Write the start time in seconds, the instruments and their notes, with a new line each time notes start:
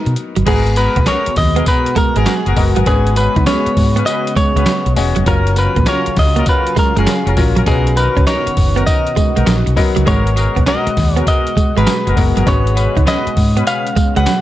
Already playing: grand piano F#3 B3 D#4 A#4, clean electric guitar D#4
0.06 fingered electric bass B2, muted clean electric guitar stroke, closed hi-hat
0.16 closed hi-hat
0.36 fingered electric bass G1, clean electric guitar F#3, closed hi-hat
0.46 fingered electric bass G#1, analog synth pad B2 G#3 B3 F#4, grand piano G#3 B3 F#4 B4, clean electric guitar G#3 G#4, horn section B3 F#4 G#4 A#4, kick, closed hi-hat, crash, tambourine
0.67 closed hi-hat
0.76 horn section B3 F#4 G#4 A#4, clean electric guitar B4, muted clean electric guitar stroke, closed hi-hat, tambourine
0.96 fingered electric bass B1, clean electric guitar B3, kick, closed hi-hat
1.06 horn section B3 F#4 G#4 A#4, clean electric guitar C#4 C#5, snare, clap, closed hi-hat, tambourine
1.26 muted clean electric guitar stroke, muted fingered electric bass stroke, closed hi-hat
1.36 fingered electric bass D#2, clean electric guitar D#5, kick, snare, open hi-hat
1.56 horn section B3 F#4 G#4 A#4, clean electric guitar B3, closed hi-hat
1.66 horn section B3 F#4 G#4 A#4, clean electric guitar B4, muted clean electric guitar stroke, kick, closed hi-hat, tambourine
1.86 closed hi-hat
1.95 clean electric guitar G#3 A4 A#4, muted fingered electric bass stroke, kick, closed hi-hat, tambourine
2.16 fingered electric bass G#1, clean electric guitar G#3 G#4, horn section B3 F#4 G#4 A#4, closed hi-hat
2.26 clean electric guitar F#3, snare, clap, closed hi-hat, tambourine
2.46 fingered electric bass F#1, horn section B3 F#4 G#4 A#4, muted clean electric guitar stroke, closed hi-hat
2.56 fingered electric bass F#1, grand piano G#3 B3 F#4 A#4, kick, open hi-hat, tambourine
2.76 fingered electric bass G1, clean electric guitar F#3, horn section B3 F#4 G#4 A#4, closed hi-hat
2.86 fingered electric bass G#1, analog synth pad C#3 B3, grand piano G#3 C#4 F#4 B4, horn section C#4 F#4 G#4 B4, clean electric guitar C#4 G#4, kick, closed hi-hat, tambourine
3.07 closed hi-hat
3.16 horn section C#4 F#4 G#4 B4, clean electric guitar B4, muted clean electric guitar stroke, closed hi-hat, tambourine
3.36 fingered electric bass C#2, clean electric guitar D#4, kick, closed hi-hat
3.46 horn section C#4 F#4 G#4 B4, clean electric guitar C#4 C#5, snare, clap, closed hi-hat, tambourine
3.66 muted clean electric guitar stroke, muted fingered electric bass stroke, closed hi-hat
3.77 fingered electric bass G#2, kick, open hi-hat
3.96 clean electric guitar B3, horn section C#4 F#4 G#4 B4, closed hi-hat
4.06 horn section C#4 F#4 G#4 B4, clean electric guitar D#5, muted clean electric guitar stroke, closed hi-hat, tambourine
4.27 closed hi-hat
4.36 clean electric guitar G#3 C#5, muted fingered electric bass stroke, kick, closed hi-hat, tambourine
4.56 fingered electric bass C#2, clean electric guitar G#3, horn section C#4 F#4 G#4 B4, closed hi-hat
4.66 clean electric guitar F#3, snare, clap, closed hi-hat, tambourine
4.86 fingered electric bass B1, muted clean electric guitar stroke, closed hi-hat
4.96 fingered electric bass E1, grand piano G#3 C#4 F#4 C#5, open hi-hat, tambourine
5.16 fingered electric bass F1, clean electric guitar F#3, closed hi-hat
5.26 fingered electric bass F#1, analog synth pad C#3 F#3 C#4 F4, grand piano F#3 C#4 F4 C#5, clean electric guitar F#3 A#4, horn section C#4 F4 F#4 A#4, kick, closed hi-hat, tambourine
5.47 closed hi-hat
5.56 horn section C#4 F4 F#4 A#4, clean electric guitar B4, muted clean electric guitar stroke, closed hi-hat, tambourine
5.76 fingered electric bass A#1, clean electric guitar A#3, kick, closed hi-hat
5.86 horn section C#4 F4 F#4 A#4, clean electric guitar C#4 C#5, snare, clap, closed hi-hat, tambourine
6.06 muted clean electric guitar stroke, muted fingered electric bass stroke, closed hi-hat
6.16 fingered electric bass C#2, clean electric guitar D#5, kick, snare, open hi-hat
6.36 clean electric guitar A#3, horn section C#4 F4 F#4 A#4, closed hi-hat
6.46 horn section C#4 F4 F#4 A#4, clean electric guitar B4, muted clean electric guitar stroke, kick, closed hi-hat, tambourine
6.67 closed hi-hat
6.76 clean electric guitar G#3 A#4, muted fingered electric bass stroke, kick, closed hi-hat, tambourine
6.96 fingered electric bass F#1, clean electric guitar G#3 G#4, horn section C#4 F4 F#4 A#4, closed hi-hat
7.07 clean electric guitar F#3, snare, clap, closed hi-hat, tambourine
7.26 fingered electric bass F1, horn section C#4 F4 F#4 A#4, muted clean electric guitar stroke, closed hi-hat
7.37 fingered electric bass A1, grand piano F#3 C#4 F4 A#4, kick, open hi-hat, tambourine
7.56 fingered electric bass A#1, clean electric guitar F#3, horn section C#4 F4 F#4 A#4, closed hi-hat
7.66 fingered electric bass B1, analog synth pad B2 D#3 F#4, grand piano F#3 B3 D#4 B4, horn section B3 D#4 F#4 A#4, clean electric guitar B3 G#4, kick, closed hi-hat, tambourine
7.87 closed hi-hat
7.96 horn section B3 D#4 F#4 A#4, clean electric guitar B4, muted clean electric guitar stroke, closed hi-hat, tambourine
8.17 fingered electric bass C#2, clean electric guitar C#4, kick, closed hi-hat
8.26 horn section B3 D#4 F#4 A#4, clean electric guitar D#4 C#5, snare, clap, closed hi-hat, tambourine
8.47 muted clean electric guitar stroke, muted fingered electric bass stroke, closed hi-hat
8.57 fingered electric bass F#1, kick, open hi-hat
8.76 horn section B3 D#4 F#4 A#4, clean electric guitar B3, closed hi-hat
8.86 horn section B3 D#4 F#4 A#4, clean electric guitar D#5, muted clean electric guitar stroke, kick, closed hi-hat, tambourine
9.07 closed hi-hat
9.16 clean electric guitar G#3, muted fingered electric bass stroke, kick, closed hi-hat, tambourine
9.36 fingered electric bass B1, clean electric guitar G#3, horn section B3 D#4 F#4 A#4, closed hi-hat
9.46 fingered electric bass A#1, clean electric guitar F#3, snare, clap, closed hi-hat, tambourine
9.66 fingered electric bass B1, muted clean electric guitar stroke, closed hi-hat
9.76 grand piano F#3 B3 D#4 A#4, kick, open hi-hat, tambourine
9.96 fingered electric bass C#2, clean electric guitar F#3, closed hi-hat
10.06 fingered electric bass G#1, clean electric guitar G#3 C#5, grand piano G#3 B3 F#4 A#4, analog synth pad G#3, horn section B3 F#4 G#4 A#4, kick, closed hi-hat, tambourine
10.27 closed hi-hat
10.36 horn section B3 F#4 G#4 A#4, muted clean electric guitar stroke, closed hi-hat, tambourine
10.56 fingered electric bass B1, clean electric guitar B3, kick, closed hi-hat
10.66 horn section B3 F#4 G#4 A#4, clean electric guitar C#4 D#5, snare, clap, closed hi-hat, tambourine
10.87 muted clean electric guitar stroke, muted fingered electric bass stroke, closed hi-hat
10.97 fingered electric bass D#2, kick, snare, open hi-hat
11.15 horn section B3 F#4 G#4 A#4, clean electric guitar B3 C#5, closed hi-hat
11.26 horn section B3 F#4 G#4 A#4, clean electric guitar D#5, muted clean electric guitar stroke, kick, closed hi-hat, tambourine
11.47 closed hi-hat
11.57 clean electric guitar G#3, muted fingered electric bass stroke, kick, closed hi-hat, tambourine
11.76 fingered electric bass G#1, clean electric guitar G#3 B4, horn section B3 F#4 G#4 A#4, closed hi-hat
11.87 clean electric guitar F#3, snare, clap, closed hi-hat, tambourine
12.06 fingered electric bass F#1, horn section B3 F#4 G#4 A#4, muted clean electric guitar stroke, closed hi-hat
12.16 fingered electric bass F#1, grand piano G#3 B3 F#4 A#4, kick, open hi-hat, tambourine
12.36 fingered electric bass G1, clean electric guitar F#3, horn section B3 F#4 G#4 A#4, closed hi-hat
12.46 fingered electric bass G#1, analog synth pad C#3, grand piano G#3 C#4 F#4 B4, horn section C#4 F#4 G#4 B4, clean electric guitar C#4 C#5, kick, closed hi-hat, tambourine
12.67 closed hi-hat
12.76 horn section C#4 F#4 G#4 B4, muted clean electric guitar stroke, closed hi-hat, tambourine
12.97 fingered electric bass C#2, clean electric guitar D#4, kick, closed hi-hat
13.05 horn section C#4 F#4 G#4 B4, clean electric guitar C#4 D#5, snare, clap, closed hi-hat, tambourine
13.27 muted clean electric guitar stroke, muted fingered electric bass stroke, closed hi-hat
13.37 fingered electric bass G#2, kick, open hi-hat
13.56 clean electric guitar B3, horn section C#4 F#4 G#4 B4, closed hi-hat
13.66 horn section C#4 F#4 G#4 B4, clean electric guitar F5, muted clean electric guitar stroke, closed hi-hat, tambourine
13.87 closed hi-hat
13.96 clean electric guitar G#3, muted fingered electric bass stroke, kick, closed hi-hat, tambourine
14.16 fingered electric bass C#2, clean electric guitar G#3 F#5, horn section C#4 F#4 G#4 B4, closed hi-hat
14.26 clean electric guitar F#3, snare, clap, closed hi-hat, tambourine